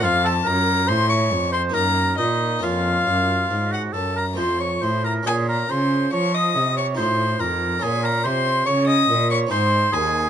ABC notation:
X:1
M:3/4
L:1/16
Q:1/4=70
K:Bbm
V:1 name="Violin"
f =a b2 c' d'2 c' b2 e2 | f4- f g =a b c' d' c' b | a b c'2 d' e'2 d' c'2 b2 | a b c'2 d' e'2 d' c'2 a2 |]
V:2 name="Oboe"
F =A B2 c d2 c B2 E2 | F4- F G =A B c d c B | A B c2 d e2 d c2 B2 | A B c2 d e2 d c2 A2 |]
V:3 name="Harpsichord"
[=A,CF]8 [B,E]4 | [B,DF]8 [=A,CF]4 | [DF]8 [EF]4 | [DF]8 [CEA]4 |]
V:4 name="Harpsichord" clef=bass
F,,2 G,,2 =A,,2 F,,2 G,,2 B,,2 | F,,2 G,,2 A,,2 G,,2 F,,2 =A,,2 | B,,2 D,2 F,2 C,2 =A,,2 F,,2 | B,,2 C,2 D,2 B,,2 A,,2 E,,2 |]
V:5 name="Cello" clef=bass
F,,2 G,,2 =A,,2 F,,2 G,,2 B,,2 | F,,2 G,,2 A,,2 G,,2 F,,2 =A,,2 | B,,2 D,2 F,2 C,2 =A,,2 F,,2 | B,,2 C,2 D,2 B,,2 A,,2 E,,2 |]